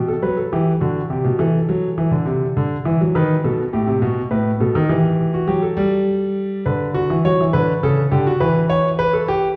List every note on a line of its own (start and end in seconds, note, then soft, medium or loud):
0.00 0.12 B2 medium
0.08 0.22 A4 medium
0.22 0.41 F#3 medium
0.22 0.37 B4 medium
0.37 0.51 A4 medium
0.53 0.71 E3 medium
0.53 0.71 G4 medium
0.81 0.99 D3 medium
0.81 0.99 F#4 medium
1.10 1.24 C3 medium
1.10 1.28 G4 medium
1.24 1.39 B2 medium
1.39 1.57 E3 medium
1.39 3.11 A4 medium
1.69 1.87 F#3 loud
1.98 2.12 E3 medium
2.11 2.26 D3 medium
2.26 2.44 C3 medium
2.57 2.75 D3 medium
2.85 3.00 E3 medium
3.01 3.15 F#3 medium
3.15 3.33 D#3 medium
3.15 3.34 B4 medium
3.44 3.62 B2 medium
3.44 3.62 A4 medium
3.73 3.88 A2 medium
3.73 3.91 G4 medium
3.87 4.02 C3 medium
4.02 4.20 B2 loud
4.02 4.20 F#4 medium
4.31 4.49 A2 medium
4.31 4.49 B4 medium
4.60 4.75 B2 medium
4.60 4.79 A4 medium
4.75 4.90 D#3 loud
4.89 5.47 E3 medium
4.89 5.32 G4 medium
5.34 5.48 F#4 medium
5.47 5.66 F#3 loud
5.47 5.62 G4 medium
5.62 6.63 A4 medium
5.77 6.63 G3 loud
6.66 7.09 D3 medium
6.66 6.84 B4 medium
6.95 7.13 F#4 loud
7.10 7.24 E3 medium
7.25 7.39 F#3 medium
7.25 7.43 C#5 loud
7.41 7.54 E3 medium
7.53 7.72 D3 medium
7.53 7.71 B4 loud
7.83 8.01 C#3 medium
7.83 8.01 A4 loud
8.11 8.30 D3 medium
8.11 8.26 G4 medium
8.27 8.41 F#4 loud
8.40 9.56 E3 medium
8.40 8.59 B4 loud
8.70 8.88 C#5 loud
8.99 9.13 B4 loud
9.13 9.28 A4 medium
9.28 9.46 G4 loud